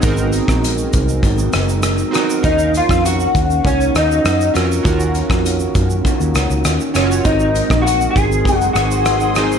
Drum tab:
HH |x-x-x-x-x-x-x-x-|x-x-x-x-x-x-x-x-|x-x-x-x-x-x-x-x-|x-x-x-x-x-x-x-x-|
SH |xxxxxxxxxxxxxxxx|xxxxxxxxxxxxxxxx|xxxxxxxxxxxxxxxx|xxxxxxxxxxxxxxxx|
SD |---r------r-r-r-|---r------r-r-r-|---r------r-r-r-|---r------r-r-r-|
BD |o--o--o-o-------|o--o--o-o-------|o--o--o-o-------|o--o--o-o-------|